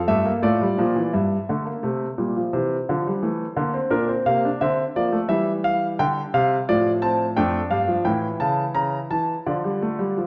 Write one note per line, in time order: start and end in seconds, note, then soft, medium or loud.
0.00 0.41 A4 medium
0.08 0.30 G2 medium
0.08 0.25 A3 medium
0.08 0.30 E5 medium
0.25 0.42 A#3 medium
0.42 0.64 A2 medium
0.42 0.60 A3 medium
0.42 1.11 F4 medium
0.42 1.11 D5 medium
0.61 0.78 G3 medium
0.78 1.00 A#2 medium
0.78 0.95 F3 medium
0.96 1.13 E3 medium
1.13 1.35 G2 medium
1.13 1.35 G3 medium
1.13 2.49 E5 medium
1.49 1.71 D3 medium
1.49 1.66 A3 medium
1.65 1.83 A#3 medium
1.83 2.05 C3 medium
1.83 2.05 A3 medium
2.18 2.40 A#2 medium
2.18 2.35 G3 medium
2.36 2.53 F3 medium
2.53 2.75 C3 medium
2.53 2.75 E3 medium
2.53 3.88 C5 medium
2.89 3.10 D3 medium
2.89 3.06 F3 medium
3.07 3.23 G3 medium
3.22 3.44 E3 medium
3.22 3.44 A3 medium
3.56 3.78 D3 medium
3.56 3.73 A#3 medium
3.74 3.91 C4 medium
3.90 4.12 A#2 medium
3.90 4.08 D4 medium
3.90 4.12 A#4 medium
4.09 4.26 C4 medium
4.26 4.48 C3 medium
4.26 4.43 A#3 medium
4.26 4.48 F5 medium
4.45 4.61 D4 medium
4.61 4.83 D3 medium
4.61 4.83 C4 medium
4.61 4.82 E5 medium
4.96 5.17 F3 medium
4.96 5.12 A#3 medium
4.96 5.17 D5 medium
5.12 5.29 A3 medium
5.28 5.96 E3 medium
5.28 6.63 G3 medium
5.28 5.50 E5 medium
5.64 5.86 F5 medium
5.99 6.21 D3 medium
5.99 6.21 G5 medium
6.34 6.55 C3 medium
6.34 6.55 F5 medium
6.69 7.36 A2 medium
6.69 7.36 F3 medium
6.69 6.90 F4 medium
6.69 6.90 D5 medium
7.02 7.24 C4 medium
7.02 7.24 A5 medium
7.36 7.59 F2 medium
7.36 7.58 A3 medium
7.36 8.04 D4 medium
7.36 7.58 G5 medium
7.70 7.93 G2 medium
7.70 7.88 G3 medium
7.70 7.92 F5 medium
7.88 8.05 F3 medium
8.04 8.27 A2 medium
8.04 9.09 E3 medium
8.04 9.41 E4 medium
8.04 8.27 G5 medium
8.40 8.62 C#3 medium
8.40 8.62 A5 medium
8.74 8.97 C#3 medium
8.74 8.97 A#5 medium
9.10 9.32 E3 medium
9.10 9.32 A5 medium
9.46 10.27 D3 medium
9.46 9.63 F3 medium
9.46 10.27 F4 medium
9.46 10.27 D5 medium
9.64 9.81 G3 medium
9.82 9.99 A3 medium
9.99 10.16 G3 medium
10.17 10.27 F3 medium